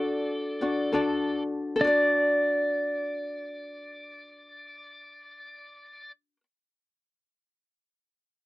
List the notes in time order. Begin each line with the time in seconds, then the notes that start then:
Already playing: D4 F#4 A4 D5
0.61 D4 F#4 D5
0.93 D4 F#4 A4 D5
1.76 A4
1.80 D4 F#4 D5
1.87 D5